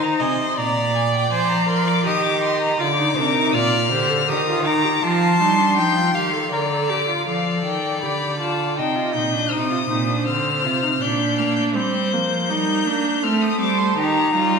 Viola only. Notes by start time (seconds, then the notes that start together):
Already playing: D#4
0.20 D#5
0.58 D5
1.33 C5
1.68 A#4
2.06 G4
2.79 F4
2.98 D#4
3.17 D4
3.36 D#4
3.54 F4
3.92 G4
4.10 A4
4.29 G4
4.48 F4
4.66 D#4
4.85 G4
5.03 F4
5.41 D#4
5.59 D4
5.78 D#4
5.97 F4
6.15 G4
6.34 A4
6.53 A#4
6.72 A4
6.90 G4
7.08 F4
7.27 A4
8.03 G4
8.40 F4
8.78 D#4
8.96 F4
9.15 D#4
9.33 D4
9.52 D#4
9.70 F4
9.89 D#4
10.08 D4
10.26 C4
10.64 F4
10.83 D#4
11.02 D4
11.75 C4
12.13 A#3
12.50 D#4
12.87 D4
13.23 C4
13.60 C5
13.98 D#4
14.35 D#4